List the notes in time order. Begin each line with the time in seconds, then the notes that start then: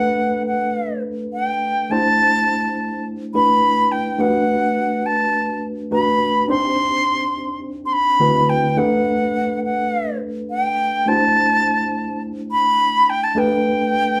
Already playing: A3 D4 G4 A4 B4 F#5
0.47 F#5
1.33 G5
1.90 A3 D4 E4 G4 C5 A5
3.34 A3 D4 E4 G4 B4 B5
3.92 G5
4.18 A3 D4 F#4 G4 B4 F#5
5.06 A5
5.91 A3 D4 F#4 G4 B4 B5
6.48 C4 D4 D#4 G4 C5 C6
7.86 C6
7.93 B5
8.20 D3 A3 C4 E4 F#4 B4
8.49 G5
8.77 A3 D4 G4 A4 B4 F#5
9.64 F#5
10.51 G5
11.06 A3 D4 E4 F#4 C5 A5
11.14 G4
12.52 B5
13.10 G5
13.24 A5
13.35 A3 D4 G4 A4 B4 G5